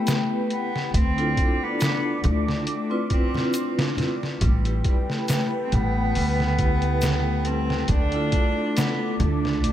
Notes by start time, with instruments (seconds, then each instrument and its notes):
Already playing: cello A3, vibraphone B3 E4 G4 B4, analog synth pad B4 G5
0.07 snare, closed hi-hat, shaker
0.50 cello B3, closed hi-hat
0.76 snare
0.94 upright bass D2, cello C4, analog synth pad D4 D6, kick, closed hi-hat
1.17 vibraphone D4 E4 F4 A4, closed hi-hat
1.37 kick, closed hi-hat
1.63 cello B3
1.80 snare, closed hi-hat, shaker
2.24 upright bass D2, cello A3, closed hi-hat, low conga
2.49 snare
2.67 cello A3, closed hi-hat
2.90 vibraphone C4 E4 F4 B4
3.10 cello C4, kick, closed hi-hat
3.34 vibraphone C4 E4 F4 B4, snare, low conga
3.54 closed hi-hat, shaker
3.79 snare
3.97 vibraphone C4 E4 F4 B4, snare, closed hi-hat, low conga
4.23 snare
4.41 upright bass A1, harp G3, synth texture A3 A4, analog synth pad B4 G5, kick, closed hi-hat
4.65 vibraphone E4 G4 B4, closed hi-hat
4.84 cello G3, kick, closed hi-hat
5.09 harp A3, snare
5.28 cello A3, harp B3, snare, closed hi-hat, shaker
5.65 cello C4
5.72 upright bass A1, harp G3, cello B3, closed hi-hat, low conga
5.96 harp A3
6.15 upright bass D2, harp G3, open hi-hat
6.40 snare
6.59 vibraphone E4 G4 B4, kick, closed hi-hat
6.82 harp A3, closed hi-hat
7.01 harp B3, snare, closed hi-hat, shaker
7.45 harp G3, cello C4, closed hi-hat
7.69 harp A3, snare
7.88 upright bass D2, harp A3, cello D4, analog synth pad D4 D6, kick, closed hi-hat
8.12 vibraphone D4 E4 F4 A4, closed hi-hat
8.32 kick, closed hi-hat
8.57 harp C4
8.76 cello B3, harp D4, snare, closed hi-hat, shaker
9.20 upright bass D2, harp A3, cello A3, closed hi-hat, low conga
9.43 harp C4, snare
9.63 upright bass A1, harp A3, closed hi-hat